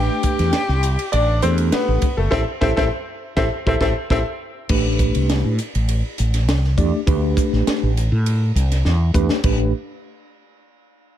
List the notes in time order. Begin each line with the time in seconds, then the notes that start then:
Already playing: A3 D4 G4 B4 G5
0.23 muted fretless electric bass stroke, kick, hi-hat pedal, ride
0.39 E2, snare, ride
0.53 snare, ride
0.69 C2, snare
0.83 hi-hat pedal, ride
0.99 ride
1.12 A1 D4 D5, ride
1.42 E2 A3 C4 D4 G4 A4 C5, hi-hat pedal, ride
1.58 ride
1.72 B3 B4, muted fretless electric bass stroke, snare, ride
1.88 A1
2.02 muted fretless electric bass stroke, kick, hi-hat pedal, ride
2.17 G1 A3 A4
2.31 A1 C4 E4 G4 A4 C5 E5, kick, snare
2.61 A1 C4 E4 G4 A4 C5 E5, kick, snare
2.77 A1 C4 E4 G4 A4 C5 E5, kick, snare
3.36 A1 C4 E4 G4 A4 C5 E5, kick, snare
3.66 A1 C4 E4 G4 A4 C5 E5, kick
3.81 A1 C4 E4 G4 A4 C5 E5, kick, snare
4.10 A1 C4 E4 G4 A4 C5 E5, kick, snare
4.69 A1 A3 D4 G4 B4, kick, crash
4.99 kick, hi-hat pedal, ride
5.15 C2, ride
5.29 snare, ride
5.45 A2
5.58 hi-hat pedal, ride
5.75 A1, ride
5.89 ride
6.18 A1, hi-hat pedal, ride
6.34 snare, ride
6.48 C2, snare, ride
6.64 snare
6.78 E2 A3 D4 G4 D5, kick, hi-hat pedal, ride
7.07 D2 A3 D4 G4 B4, kick, ride
7.37 kick, hi-hat pedal, ride
7.53 A1, snare
7.67 muted fretless electric bass stroke, snare, ride
7.83 A1
7.97 hi-hat pedal, ride
8.12 A2
8.26 ride
8.55 C2, hi-hat pedal, ride
8.72 snare, ride
8.85 E2, snare
9.14 E2 A3 D4 G4 B4, kick, hi-hat pedal
9.29 snare
9.44 A1 A3 D4 G4 B4, kick, crash